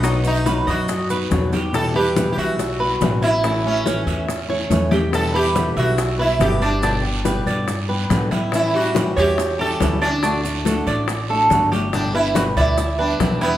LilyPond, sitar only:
\new Staff \with { instrumentName = "Sitar" } { \time 4/4 \key a \mixolydian \tempo 4 = 141 b8 dis'4 fis'4 r4. | a'8 g'8~ \tuplet 3/2 { g'8 g'16 fis'8.~ } fis'4. e'8~ | e'8 cis'4. r2 | a'8 g'4 fis'4 e'8 g'8 d'8~ |
d'2~ d'8 r4. | e'8 fis'4 g'4 a'4 d'8~ | d'2. r4 | d'8 e'8 fis'8 e'4 d'4 b8 | }